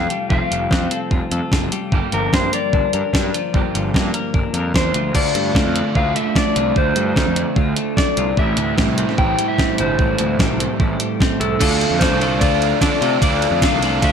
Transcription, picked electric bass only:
0.30 F1
0.51 F1
0.71 F2
1.11 F1
1.32 F2
1.52 F#1
1.93 G1
2.13 G1
2.33 G2
2.74 G1
2.94 G2
3.13 G2
3.54 G1
3.75 G1
3.94 G2
4.34 G1
4.54 F2
4.74 E2
4.95 D2
5.15 D2
5.35 G2
5.55 D2
5.65 F2
5.96 D2
6.56 C2
6.76 D2
6.96 G2
7.16 D2
7.27 F2
7.57 D2
8.18 C2
8.37 A1
8.58 D2
8.78 A1
8.87 C2
9.18 A1
9.80 G1
9.99 A1
10.20 D2
10.39 A1
10.50 C2
10.79 A1
11.41 C2
11.60 D2
11.91 F2
12.11 C2
12.41 D2
12.81 D3
13.01 C3
13.22 D2
13.51 F2
13.72 C2
14.02 D2

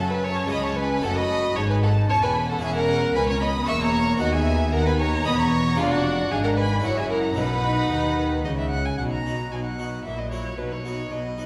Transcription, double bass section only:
Already playing: F#2
0.50 C#2
1.03 F#1
1.56 G#1
2.09 E1
2.62 E1
3.15 C#2
3.68 E1
4.21 D#2
4.73 D#2
5.25 E1
5.77 F1
6.30 G#1
6.83 F#1
7.36 B1
7.90 D#2
8.44 C#2
8.98 B1
9.51 B1
10.05 A#1
10.58 B1
11.10 B1

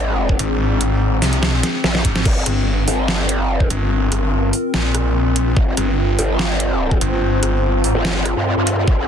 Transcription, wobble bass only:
Already playing: G#1
1.84 A#1
2.25 G1
2.88 G1
3.45 F#1
5.57 G1
6.19 G1
7.95 G1
8.36 G2
8.57 G2
8.88 G#1

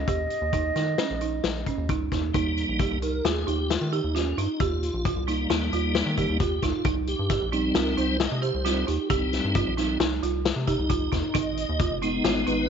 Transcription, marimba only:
0.08 G4
0.53 D#4
0.76 D#4
0.99 C#4
1.22 D#4
1.67 C#4
1.90 D#4
2.12 D#4
2.34 D#4
2.80 G4
3.02 D#4
3.25 F4
3.47 D#4
3.93 G4
4.15 F4
4.38 D#4
4.60 G4
5.05 F4
5.28 D#4
5.50 D#4
5.73 F4
6.18 G4
6.40 F4
6.63 D#4
6.85 D#4
7.30 G4
7.52 D#4
7.75 F4
7.97 D#4
8.42 G4
8.65 F4
8.87 D#4
9.10 G4
9.55 F4
9.77 D#4
10.00 D#4
10.23 F4
10.67 G4
10.90 F4
11.12 D#4
11.34 D#4
11.79 F4
12.02 D#4
12.24 F4
12.47 D#4

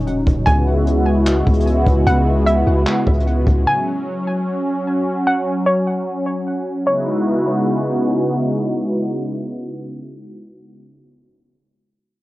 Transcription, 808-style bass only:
Already playing: D#1
0.27 D#1
0.47 C#2
1.47 C#2
1.87 C#2
2.07 C#2
2.67 C#2
3.07 C#2
3.47 C#2

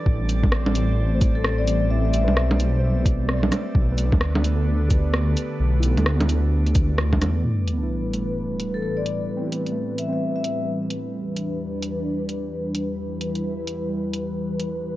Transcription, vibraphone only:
1.35 A4
1.44 A4
1.58 D5
1.90 E5
2.05 E5
2.13 E5
2.28 E5
8.74 A4
8.82 A4
8.97 D5
9.99 E5
10.13 E5
10.36 E5

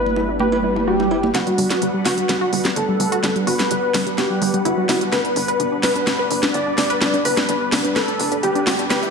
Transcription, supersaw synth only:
Already playing: G3 B3 D4 E4 B4
1.35 G3 B3 D4 B4 F#5
8.90 B3 E4

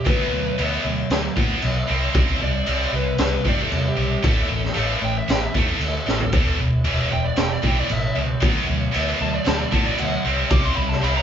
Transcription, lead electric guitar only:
0.09 B4
2.43 D5
2.96 B4
3.23 B4
3.48 D5
3.63 A4
3.89 G4
4.27 A4
5.05 G5
5.18 E5
5.32 G5
5.44 E5
5.57 A4
7.13 G5
7.25 D5
7.40 G5
7.53 D5
7.67 G5
7.79 D5
7.93 E5
9.22 A5
9.34 D5
9.48 A5
9.60 D5
9.72 A5
9.86 D5
10.00 F#5
10.51 D6
10.65 C6
10.76 B5
10.90 A5
11.03 B5
11.17 A#5

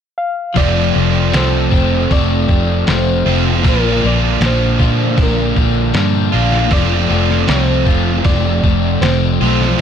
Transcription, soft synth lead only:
0.18 F5
0.57 D5
1.36 C5
2.12 D5
2.89 C5
3.69 A#4
4.07 D5
4.46 C5
5.23 A#4
6.32 F5
6.73 D5
7.48 C5
8.25 D5
9.02 C5

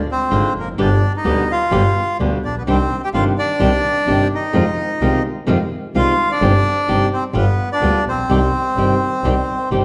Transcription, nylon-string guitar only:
0.31 D3 G#3 D4 F4
0.78 B2 D3 G3 B3 G4
1.24 B2 D3 G3 B3 G4
1.71 B2 D3 G3 B3 G4
2.20 B2 D3 G3 B3 G4
2.67 C3 D#3 G3 D4 G4
3.14 C3 D#3 G3 D4 G4
3.60 C3 D#3 G3 D4 G4
4.07 C3 D#3 G3 D4 G4
4.53 C3 D#3 G#3 C4 F4
5.01 C3 D#3 G#3 C4 F4
5.47 C3 D#3 G#3 C4 F4
5.95 C3 D#3 G#3 C4 F4
6.42 C3 G3 C4 D#4 G4
6.88 C3 G3 C4 D#4 G4
7.34 G3 B3 F4
7.82 G3 B3 F4
8.30 C3 D#3 G3 C4 G4
8.77 C3 D#3 G3 C4 G4
9.24 C3 D#3 G3 C4 G4
9.71 C3 D#3 G3 C4 G4

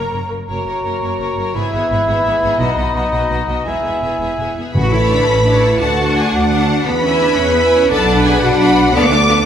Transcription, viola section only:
Already playing: A#3 A#4
0.12 A#3 A#4
0.30 A#3 A#4
0.49 A#3
0.66 A#3
0.85 A#3
1.03 A#3
1.20 A#3
1.37 A#3
1.55 B3
1.72 B3
1.89 B3
2.07 B3
2.25 B3
2.41 B3
2.58 B3
2.77 B3
2.95 B3
3.14 B3
3.31 B3
3.49 B3
3.68 B3
3.85 B3
4.03 B3
4.21 B3
4.39 B3
4.56 B3
4.91 A3 E4
5.45 A3 E4
5.79 A3 D4
5.97 A3 D4
6.51 A3 D4
7.04 E4 B4
7.56 E4 B4
7.90 D4 B4
8.08 D4 B4
8.59 D4 B4
8.94 D4 A4
9.11 D4 A4
9.29 D4 A4

